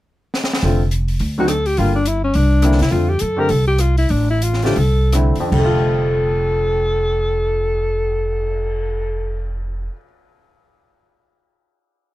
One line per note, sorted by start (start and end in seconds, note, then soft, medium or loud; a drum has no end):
0.34 snare medium
0.44 snare medium
0.53 snare medium
0.63 1.17 F1 medium
0.63 0.79 D3 medium
0.63 0.79 A3 soft
0.63 0.80 C4 soft
0.63 0.80 F4 medium
0.63 open hi-hat soft
0.91 closed hi-hat soft
1.08 open hi-hat soft
1.19 1.75 D2 medium
1.19 open hi-hat soft
1.38 1.48 D3 medium
1.38 1.48 F#3 medium
1.38 1.49 C4 medium
1.38 1.49 D#4 medium
1.38 1.50 F#4 medium
1.48 1.68 A4 medium
1.48 cross-stick medium
1.48 closed hi-hat soft
1.66 1.79 G4 medium
1.66 open hi-hat soft
1.77 2.32 G1 medium
1.77 1.93 D3 soft
1.77 1.93 G3 soft
1.77 1.94 A#3 medium
1.77 1.95 F4 medium
1.77 1.94 F4 medium
1.77 open hi-hat soft
1.95 2.09 D4 medium
2.06 2.23 E4 medium
2.06 closed hi-hat soft
2.24 2.37 C#4 medium
2.34 2.78 C2 medium
2.34 2.81 D4 medium
2.34 open hi-hat soft
2.62 2.78 D3 medium
2.62 2.79 A#3 medium
2.62 2.79 C4 medium
2.62 2.79 E4 medium
2.62 cross-stick medium
2.62 closed hi-hat soft
2.72 snare soft
2.79 2.91 C3 medium
2.79 2.93 E4 medium
2.79 snare soft
2.79 open hi-hat soft
2.90 3.18 F2 medium
2.90 3.06 D3 medium
2.90 3.07 A3 soft
2.90 3.07 C4 soft
2.90 3.11 F4 medium
2.90 3.08 F4 medium
2.90 open hi-hat soft
3.09 3.22 G4 medium
3.19 3.48 F#2 medium
3.19 3.41 A4 medium
3.19 closed hi-hat soft
3.37 3.47 D3 medium
3.37 3.48 A3 medium
3.37 3.48 C4 soft
3.37 3.48 G4 medium
3.37 3.52 A#4 medium
3.49 4.08 C2 medium
3.49 3.67 A4 medium
3.49 open hi-hat soft
3.67 3.82 G4 medium
3.78 3.97 F4 medium
3.78 cross-stick medium
3.78 closed hi-hat soft
3.98 4.12 E4 medium
3.98 open hi-hat soft
4.09 4.74 A1 medium
4.09 4.30 D4 medium
4.09 open hi-hat soft
4.30 4.45 E4 medium
4.42 4.64 F4 medium
4.42 closed hi-hat medium
4.53 snare soft
4.62 4.75 D3 medium
4.62 4.75 A3 medium
4.62 4.76 C4 soft
4.62 4.76 F4 medium
4.62 4.80 G4 medium
4.62 snare soft
4.62 open hi-hat soft
4.76 5.33 C2 medium
4.76 5.14 A4 medium
4.76 open hi-hat soft
5.12 5.34 D3 medium
5.12 5.34 A3 medium
5.12 5.35 C4 soft
5.12 5.35 E4 medium
5.12 cross-stick medium
5.12 closed hi-hat medium
5.36 muted upright bass stroke soft
5.36 open hi-hat soft
5.40 9.78 F2 medium
5.47 9.85 D3 medium
5.52 9.86 F1 medium
5.52 9.91 G3 medium
5.52 9.56 A4 medium
5.52 kick medium
5.52 crash medium
5.59 9.97 A3 medium
5.65 10.03 F4 medium
5.77 cymbal swell soft